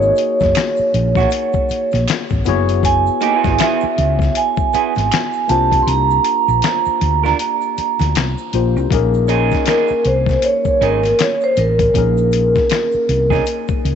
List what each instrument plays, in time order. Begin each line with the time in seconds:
Already playing: fretless electric bass G#1, tine electric piano A#3 D#4 F#4 G#4 C#5, vibraphone C#5
0.02 shaker
0.16 closed hi-hat, shaker
0.40 fretless electric bass F#1, kick, snare, shaker
0.55 finger snap, snare, closed hi-hat, shaker
0.58 finger snap
0.77 muted fretless electric bass stroke, shaker
0.94 fretless electric bass A#1, closed hi-hat
1.15 clean electric guitar A#3 C#4 F#4, kick, snare, shaker
1.30 closed hi-hat, shaker
1.53 kick, shaker
1.69 muted fretless electric bass stroke, closed hi-hat, shaker
1.91 fretless electric bass A#1, snare, closed hi-hat, shaker
2.08 finger snap, snare, closed hi-hat, shaker
2.11 finger snap
2.30 fretless electric bass G#1, kick, shaker
2.45 fretless electric bass F#1, tine electric piano B3 E4 F#4 G#4, closed hi-hat, shaker
2.49 tine electric piano C#5
2.69 closed hi-hat, shaker
2.83 vibraphone G#5, kick, closed hi-hat, shaker
3.06 shaker
3.21 clean electric guitar A#3 D#4 G4, closed hi-hat, shaker
3.36 clean electric guitar B3 E4 G#4
3.44 fretless electric bass G#1, kick, snare, shaker
3.59 clean electric guitar B3 E4 G#4, vibraphone E5, finger snap, snare, closed hi-hat, shaker
3.62 finger snap
3.81 muted fretless electric bass stroke, shaker
3.98 fretless electric bass C#2, closed hi-hat
4.19 kick, snare, shaker
4.35 vibraphone G#5, closed hi-hat, shaker
4.57 kick, shaker
4.73 clean electric guitar B3 E4 G#4, muted fretless electric bass stroke, closed hi-hat, shaker
4.95 fretless electric bass G#1, snare, closed hi-hat, shaker
5.12 finger snap, snare, closed hi-hat, shaker
5.15 finger snap
5.33 shaker
5.48 fretless electric bass C2, tine electric piano A#3 D4 F4 G4 C5, vibraphone A5, closed hi-hat, shaker
5.71 kick, closed hi-hat, shaker
5.82 vibraphone C6
5.87 fretless electric bass C2, vibraphone A#5, closed hi-hat, shaker
6.10 shaker
6.24 closed hi-hat, shaker
6.48 fretless electric bass A#1, shaker
6.62 finger snap, snare, closed hi-hat, shaker
6.85 muted fretless electric bass stroke, shaker
7.01 fretless electric bass D2, closed hi-hat
7.24 clean electric guitar D4 F4 A#4, snare, shaker
7.39 closed hi-hat, shaker
7.61 shaker
7.78 muted fretless electric bass stroke, closed hi-hat, shaker
7.99 fretless electric bass D2, snare, closed hi-hat, shaker
8.15 fretless electric bass C2, finger snap, snare, closed hi-hat, shaker
8.18 finger snap
8.38 shaker
8.53 fretless electric bass A#1, tine electric piano A#3 D4 F4 G4 C5, closed hi-hat, shaker
8.76 fretless electric bass C2, shaker
8.90 fretless electric bass A#1, tine electric piano A#3 C#4 D#4 G#4, kick, closed hi-hat, shaker
8.95 tine electric piano A#4
9.14 shaker
9.28 clean electric guitar C#4 D#4 G#4, closed hi-hat, shaker
9.51 kick, snare, shaker
9.66 clean electric guitar C#4 D#4 G#4, vibraphone A#4, finger snap, snare, closed hi-hat, shaker
9.69 finger snap
9.88 muted fretless electric bass stroke, shaker
10.05 fretless electric bass C2, vibraphone C5, closed hi-hat
10.26 kick, snare, shaker
10.42 vibraphone C#5, closed hi-hat, shaker
10.65 muted fretless electric bass stroke, kick, shaker
10.81 fretless electric bass G#1, clean electric guitar C#4 D#4 G#4, vibraphone A#4, closed hi-hat
11.03 snare, closed hi-hat, shaker
11.19 vibraphone C#5, finger snap, snare, closed hi-hat, shaker
11.22 finger snap
11.41 vibraphone C5, shaker
11.56 fretless electric bass A1, vibraphone A#4, closed hi-hat, shaker
11.79 kick, closed hi-hat, shaker
11.94 fretless electric bass A#1, tine electric piano A#3 C#4 D#4 G#4, kick, closed hi-hat, shaker
11.98 tine electric piano A#4
12.17 shaker
12.32 closed hi-hat, shaker
12.55 kick, snare, shaker
12.70 finger snap, snare, closed hi-hat, shaker
12.73 finger snap
12.92 muted fretless electric bass stroke, shaker
13.09 fretless electric bass C2, closed hi-hat
13.30 clean electric guitar C#4 D#4 G#4, kick, snare, shaker
13.46 closed hi-hat, shaker
13.68 muted fretless electric bass stroke, kick, shaker
13.85 fretless electric bass C#2, closed hi-hat